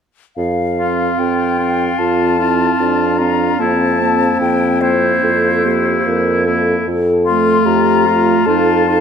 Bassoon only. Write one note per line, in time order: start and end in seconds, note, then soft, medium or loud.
0.37 1.10 F2 soft
1.19 1.90 F2 soft
1.99 2.70 F2 soft
2.80 3.50 F2 soft
3.60 4.32 F2 soft
4.41 5.14 F2 soft
5.23 5.96 F2 soft
6.07 6.78 F2 soft
6.87 7.57 F2 medium
7.65 8.37 F2 soft
8.47 9.00 F2 soft